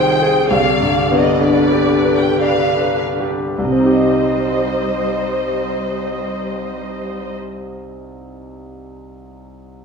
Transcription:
Already playing: C2 C3 D#3 C4 F4 G#4 C5 F5 G5
0.22 G#4
0.50 C2 D3 D5 F5
0.81 G2
1.11 B3
1.19 D#5
1.40 D4 B4 D5
1.73 G4
2.05 B4
2.16 G5
2.41 D3 B4 D5 F5
2.80 B4
3.20 G4
3.58 C2 G3 C5 D#5
3.65 C3
3.72 C4
3.79 D#4
3.86 G4
3.93 D#5

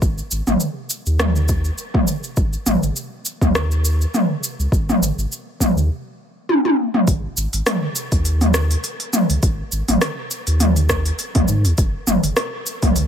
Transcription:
0.02 G#1, kick, cabasa
0.18 cabasa
0.31 G#1, cabasa
0.47 G#1, mid tom, cabasa
0.60 cabasa
0.90 cabasa
1.06 D#2, cabasa
1.20 cross-stick, mid tom, cabasa
1.36 cabasa
1.48 kick, cabasa
1.65 cabasa
1.78 cabasa
1.94 kick, mid tom
2.07 cabasa
2.24 cabasa
2.37 G#1, kick, cabasa
2.53 cabasa
2.66 G#1, mid tom, cabasa
2.83 G#1, cabasa
2.96 cabasa
3.25 cabasa
3.41 D#2, kick, mid tom, cabasa
3.55 cross-stick, cabasa
3.71 cabasa
3.85 cabasa
4.01 cabasa
4.14 mid tom, cabasa
4.44 cabasa
4.59 C#2, cabasa
4.72 G#1, kick, cabasa
4.89 mid tom, cabasa
5.01 G#1, cabasa
5.18 G#1, cabasa
5.32 cabasa
5.60 kick, mid tom, cabasa
5.76 D#2, cabasa
6.49 high tom
6.65 high tom
6.94 mid tom
7.08 G#1, kick, open hi-hat, cabasa
7.37 G#1, cabasa
7.53 G#1, open hi-hat, cabasa
7.66 cross-stick, mid tom, open hi-hat, cabasa
7.96 open hi-hat, cabasa
8.12 D#2, kick, open hi-hat, cabasa
8.25 open hi-hat, cabasa
8.41 mid tom, open hi-hat, cabasa
8.54 cross-stick, cabasa
8.71 open hi-hat, cabasa
8.84 open hi-hat, cabasa
9.00 open hi-hat
9.13 mid tom, cabasa
9.29 C#2, open hi-hat, cabasa
9.43 G#1, kick, open hi-hat, cabasa
9.72 G#1, cabasa
9.88 G#1, mid tom, open hi-hat, cabasa
10.01 cross-stick, open hi-hat, cabasa
10.31 open hi-hat, cabasa
10.47 D#2, open hi-hat, cabasa
10.60 mid tom, open hi-hat, cabasa
10.76 open hi-hat, cabasa
10.89 kick, cross-stick, cabasa
11.06 open hi-hat, cabasa
11.19 open hi-hat, cabasa
11.35 D#2, kick, mid tom, open hi-hat
11.48 G#2, cabasa
11.64 D#2, open hi-hat, cabasa
11.78 F#1, kick, open hi-hat, cabasa
12.07 F#1, mid tom, cabasa
12.23 F#1, open hi-hat, cabasa
12.37 cross-stick, open hi-hat, cabasa
12.66 open hi-hat, cabasa
12.83 C#2, kick, mid tom, open hi-hat, cabasa
12.96 open hi-hat, cabasa

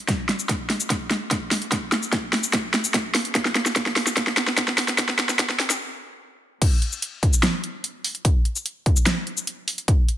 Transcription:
0.08 kick, snare, closed hi-hat
0.29 snare, closed hi-hat
0.39 shaker
0.49 kick, snare, closed hi-hat
0.70 snare, open hi-hat
0.80 shaker
0.90 kick, snare, closed hi-hat
1.11 snare, closed hi-hat
1.31 kick, snare, closed hi-hat
1.51 snare, open hi-hat
1.62 closed hi-hat
1.72 kick, snare, closed hi-hat
1.92 snare, closed hi-hat
2.03 shaker
2.13 kick, snare, closed hi-hat
2.33 snare, open hi-hat
2.43 shaker
2.53 kick, snare, closed hi-hat
2.74 snare, closed hi-hat
2.84 shaker
2.94 kick, snare, closed hi-hat
3.15 snare, open hi-hat
3.25 closed hi-hat
3.35 kick, snare, closed hi-hat
3.45 snare
3.55 snare, closed hi-hat
3.66 snare, shaker
3.76 kick, snare, closed hi-hat
3.86 snare
3.96 snare, open hi-hat
4.07 snare, shaker
4.17 kick, snare, closed hi-hat
4.27 snare
4.37 snare, closed hi-hat
4.48 snare
4.58 kick, snare, closed hi-hat
4.68 snare
4.78 snare, open hi-hat
4.88 snare, closed hi-hat
4.98 kick, snare, closed hi-hat
5.09 snare
5.19 snare, closed hi-hat
5.29 snare, shaker
5.39 kick, snare, closed hi-hat
5.50 snare
5.60 snare, open hi-hat
5.70 snare, closed hi-hat, shaker
6.62 kick, closed hi-hat, crash
6.82 closed hi-hat
6.92 shaker
7.02 closed hi-hat
7.23 kick, closed hi-hat
7.33 shaker
7.43 snare, closed hi-hat
7.64 closed hi-hat
7.84 closed hi-hat
8.04 open hi-hat
8.15 closed hi-hat
8.25 kick, closed hi-hat
8.45 closed hi-hat
8.56 shaker
8.66 closed hi-hat
8.86 kick, closed hi-hat
8.96 shaker
9.06 snare, closed hi-hat
9.27 closed hi-hat
9.37 shaker
9.47 closed hi-hat
9.68 open hi-hat
9.78 closed hi-hat
9.88 kick, closed hi-hat
10.09 closed hi-hat

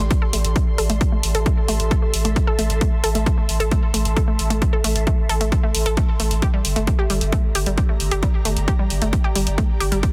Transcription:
Already playing: G4 A4 D5 E5 A5 C6
0.00 A1
0.11 kick, closed hi-hat
0.22 A4
0.33 A1 A3, open hi-hat
0.44 A1, closed hi-hat
0.56 A3, kick, closed hi-hat
0.78 A1 A4, open hi-hat
0.90 A1 A3, closed hi-hat
1.01 kick, closed hi-hat
1.12 A3
1.23 A1, open hi-hat
1.35 A1 A4, closed hi-hat
1.46 A3, kick, closed hi-hat
1.68 A1 A3, open hi-hat
1.80 A1, closed hi-hat
1.91 A4, kick, closed hi-hat
2.02 A3
2.14 A1, open hi-hat
2.25 A1 A3, closed hi-hat
2.36 kick, closed hi-hat
2.47 A4
2.59 A1 A3, open hi-hat
2.70 A1, closed hi-hat
2.81 A3, kick, closed hi-hat
3.04 A1 A4, open hi-hat
3.15 A1 A3, closed hi-hat
3.26 kick, closed hi-hat
3.38 A3
3.49 A1, open hi-hat
3.60 A1 A4, closed hi-hat
3.71 A3, kick, closed hi-hat
3.94 A1 A3, open hi-hat
4.05 A1, closed hi-hat
4.16 A4, kick, closed hi-hat
4.28 A3
4.39 A1, open hi-hat
4.50 A1 A3, closed hi-hat
4.62 kick, closed hi-hat
4.73 A4
4.84 A1 A3, open hi-hat
4.96 A1, closed hi-hat
5.07 A3, kick, closed hi-hat
5.29 A1 A4, open hi-hat
5.41 A1 A3, closed hi-hat
5.52 kick, closed hi-hat
5.63 A3
5.75 A1, open hi-hat
5.86 A1 A4, closed hi-hat
5.97 A3, kick, closed hi-hat
6.20 A1 A3, open hi-hat
6.31 A1, closed hi-hat
6.42 G4, kick, closed hi-hat
6.54 G3
6.65 G1, open hi-hat
6.72 A#5
6.76 G1 A3, closed hi-hat
6.87 kick, closed hi-hat
6.99 G4 D5
7.10 G1 G3, open hi-hat
7.21 G1, closed hi-hat
7.32 A3, kick, closed hi-hat
7.55 G1 G4, open hi-hat
7.66 G1 G3, closed hi-hat
7.78 kick, closed hi-hat
7.89 A3
8.00 G1, open hi-hat
8.11 G1 G4, closed hi-hat
8.23 G3, kick, closed hi-hat
8.45 G1 A3, open hi-hat
8.56 G1, closed hi-hat
8.68 G4, kick, closed hi-hat
8.79 G3
8.90 G1, open hi-hat
9.02 G1 A3, closed hi-hat
9.13 kick, closed hi-hat
9.24 G4
9.35 G1 G3, open hi-hat
9.47 G1, closed hi-hat
9.58 A3, kick, closed hi-hat
9.80 G1 G4, open hi-hat
9.92 G1 G3, closed hi-hat
10.03 kick, closed hi-hat

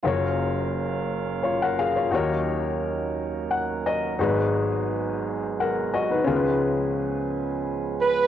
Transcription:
0.03 F#1 F#2 F#3 A#3 C#4 F4 F#4 A#4 F5
0.07 C#5
1.43 F4 C#5
1.62 A#4 F#5
1.79 G#4 F5
1.96 F4 C#5
2.11 D#2 D#3 A#3 D#4 F#4 A#4
2.15 C#5
3.51 F#5
3.86 D#5
4.19 G#1 G#2 G#3 B3 D#4 F#4 G#4 B4
5.60 A#4 F#5
5.94 F#4 D#5
6.11 D#4 B4
6.24 C#2 C#3 F3 G#3 C#4 F4 G#4
6.29 A#4
6.36 B4
8.01 B4

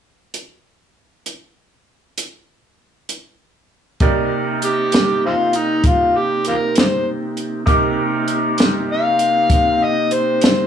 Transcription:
0.34 closed hi-hat
1.26 closed hi-hat
2.18 closed hi-hat
3.09 closed hi-hat
4.00 C3 A#3 C4 D#4 G4 A#4 D5, kick, closed hi-hat
4.62 G4, closed hi-hat
4.92 snare, closed hi-hat
5.26 C4 F4
5.53 D#4, closed hi-hat
5.84 F4, kick, closed hi-hat
6.17 G4
6.45 F4 G4 A#4, closed hi-hat
6.76 D#4 G4 C5, snare, closed hi-hat
7.37 closed hi-hat
7.66 C3 A#3 C4 D#4 G4 A#4 D6, kick, closed hi-hat
8.28 closed hi-hat
8.58 snare, closed hi-hat
8.91 F5
9.19 closed hi-hat
9.50 kick, closed hi-hat
9.83 D#5
10.11 C5, closed hi-hat
10.41 snare, closed hi-hat

